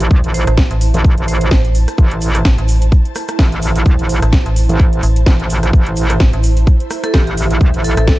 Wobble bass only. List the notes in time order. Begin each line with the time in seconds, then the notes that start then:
0.11 C2
0.24 A1
0.94 A1
1.18 A1
1.98 A1
3.39 A1
3.86 C2
3.99 A1
4.69 A1
5.26 A1
5.73 A1
7.14 A1
7.61 C2
7.74 A1